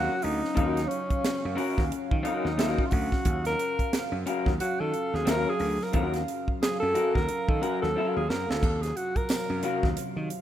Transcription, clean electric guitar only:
0.00 0.12 C#4 medium
0.00 0.12 F#4 medium
0.00 0.13 A#4 medium
0.00 0.12 F5 medium
0.55 0.79 C#4 medium
0.55 0.79 F#4 medium
0.55 0.79 A#4 medium
0.55 0.80 F#5 medium
1.55 1.79 C#4 medium
1.55 1.80 F#4 medium
1.55 1.80 A#4 loud
1.55 1.80 F#5 loud
2.23 2.47 C#4 medium
2.23 2.47 F#4 medium
2.23 2.48 A#4 medium
2.23 2.48 F#5 medium
2.58 2.81 C#4 medium
2.58 2.81 F#4 medium
2.58 2.81 A#4 medium
2.58 2.82 F5 loud
4.26 4.49 C#4 medium
4.26 4.49 F#4 medium
4.26 4.49 A#4 medium
4.26 4.50 F5 medium
5.25 5.49 C#4 medium
5.25 5.49 F#4 medium
5.25 5.50 A#4 medium
5.25 5.50 F5 medium
5.93 6.16 C#4 medium
5.93 6.16 F#4 medium
5.93 6.17 A#4 medium
5.93 6.17 F#5 medium
6.94 7.17 C#4 medium
6.94 7.17 F#4 medium
6.94 7.18 A#4 medium
6.94 7.18 F#5 medium
7.62 7.84 C#4 medium
7.62 7.85 F#4 medium
7.62 7.85 A#4 medium
7.62 7.85 F#5 medium
7.96 8.18 C#4 medium
7.96 8.19 F#4 medium
7.96 8.19 A#4 medium
7.96 8.19 F5 medium
9.63 9.86 C#4 medium
9.63 9.86 F#4 medium
9.63 9.86 A#4 medium
9.63 9.86 F5 loud

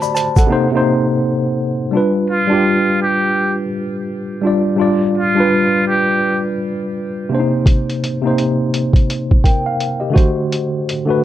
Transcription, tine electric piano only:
0.00 0.53 D3 medium
0.00 0.53 A3 medium
0.00 0.53 F#4 medium
0.00 0.53 G4 medium
0.00 0.16 C5 medium
0.00 0.16 D5 medium
0.00 0.15 A5 medium
0.00 0.15 B5 medium
0.15 0.36 C5 medium
0.15 0.36 A5 medium
0.37 0.72 A4 medium
0.37 0.71 F#5 medium
0.47 0.66 C3 medium
0.47 0.67 A#3 medium
0.47 0.68 D#4 medium
0.52 0.69 C5 loud
0.71 1.70 C3 medium
0.71 1.71 A#3 medium
0.71 1.72 D#4 medium
0.77 1.73 C5 loud
1.91 2.37 G3 medium
1.91 2.38 D4 medium
1.91 2.39 F4 medium
1.97 2.40 B4 medium
2.47 3.62 G3 medium
2.47 3.63 D4 medium
2.47 3.64 F4 medium
2.53 3.65 G4 medium
4.42 4.73 G3 medium
4.42 4.74 D4 medium
4.42 4.75 F4 medium
4.47 4.76 D5 medium
4.76 5.22 G3 medium
4.76 5.23 D4 medium
4.76 5.24 F4 medium
4.81 5.25 D5 medium
5.35 6.49 G3 medium
5.35 6.50 D4 medium
5.35 6.50 F4 medium
5.40 6.51 B4 medium
7.29 8.01 C3 medium
7.29 8.02 A#3 medium
7.29 7.39 D4 medium
7.34 8.04 C5 medium
7.39 8.06 D#4 medium
8.22 9.35 C3 medium
8.22 9.36 A#3 medium
8.22 9.37 D#4 medium
8.27 9.11 C5 medium
9.44 9.65 A#4 soft
9.44 9.65 G5 medium
9.66 10.00 F5 medium
10.00 10.35 G4 medium
10.00 10.35 D#5 medium
10.10 10.84 D3 medium
10.10 10.85 A3 medium
10.10 10.86 F#4 medium
10.16 10.87 C5 medium
11.05 11.24 D3 medium
11.05 11.24 A3 medium
11.05 11.24 F#4 medium
11.10 11.24 B4 medium

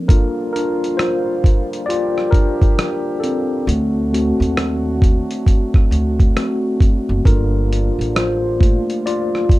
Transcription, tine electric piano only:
0.08 1.40 A#3 medium
0.08 0.51 D4 medium
0.08 0.99 F4 medium
0.08 1.39 A4 medium
0.08 0.52 A#4 loud
0.53 0.97 D4 medium
0.53 0.99 A#4 medium
0.97 1.85 F4 medium
0.97 1.90 C5 loud
1.86 2.30 F4 medium
1.86 2.33 D5 loud
2.31 3.19 D4 medium
2.31 3.17 A#4 loud
3.20 4.12 C4 medium
3.20 5.86 A4 medium
4.13 4.76 A3 medium
4.13 4.77 C4 medium
4.13 4.77 F#4 medium
6.36 6.77 A3 soft
6.36 6.77 C4 soft
6.36 6.77 F#4 medium
7.26 8.59 A#3 medium
7.26 8.12 D4 medium
7.26 8.16 F4 medium
7.26 9.59 A4 medium
7.26 8.18 A#4 medium
8.16 8.60 F4 medium
8.16 9.08 C5 medium
8.60 9.01 A3 soft
8.60 9.01 A#3 soft
8.60 9.01 F4 medium
9.06 9.59 F4 medium
9.06 9.59 D5 loud

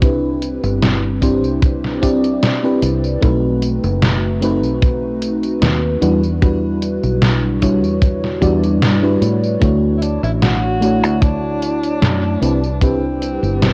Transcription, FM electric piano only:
0.01 0.20 C4 medium
0.01 0.20 D4 medium
0.01 0.21 E4 medium
0.01 0.21 G4 medium
0.01 0.21 B4 medium
1.21 1.40 C4 medium
1.21 1.40 D4 medium
1.21 1.41 E4 medium
1.21 1.41 G4 medium
1.21 1.41 C5 medium
2.01 2.20 C4 medium
2.01 2.20 D4 medium
2.01 2.21 E4 medium
2.01 2.21 G4 medium
2.01 2.21 D5 loud
2.63 3.17 C4 medium
2.63 3.18 D4 medium
2.63 3.18 E4 medium
2.63 3.18 G4 medium
2.63 3.18 B4 loud
3.21 4.37 A3 medium
3.21 4.37 C4 medium
3.21 4.38 D#4 medium
3.21 4.38 F#4 medium
3.21 4.39 B4 medium
4.41 5.97 A3 medium
4.41 5.98 C4 medium
4.41 5.98 D#4 medium
4.41 5.98 F#4 medium
4.41 5.99 B4 loud
6.02 6.20 G3 medium
6.02 6.21 D4 medium
6.02 6.21 E4 medium
6.02 6.21 F#4 medium
6.02 6.21 B4 medium
6.42 6.61 G3 medium
6.42 6.61 D4 medium
6.42 6.61 E4 medium
6.42 6.61 F#4 medium
6.42 6.61 B4 medium
7.61 7.80 G3 medium
7.61 7.81 D4 medium
7.61 7.81 E4 medium
7.61 7.81 F#4 medium
7.61 7.81 C#5 loud
8.41 8.60 G3 medium
8.41 8.60 D4 medium
8.41 8.61 E4 medium
8.41 8.61 F#4 medium
8.41 8.61 D5 loud
9.02 9.57 G3 medium
9.02 9.57 D4 medium
9.02 9.57 E4 medium
9.02 9.58 F#4 medium
9.02 9.58 B4 medium
9.60 10.76 A3 medium
9.60 10.77 D4 medium
9.60 10.77 E4 medium
9.60 10.78 F#4 medium
9.60 10.78 C#5 medium
10.80 12.37 A3 medium
10.80 12.37 D4 medium
10.80 12.38 E4 medium
10.80 12.38 F#4 medium
10.80 12.38 C#5 loud
12.41 12.60 C4 medium
12.41 12.60 D4 medium
12.41 12.61 E4 medium
12.41 12.61 G4 medium
12.41 12.61 B4 medium
12.81 13.00 C4 medium
12.81 13.00 D4 medium
12.81 13.01 E4 medium
12.81 13.01 G4 medium
12.81 13.01 B4 medium

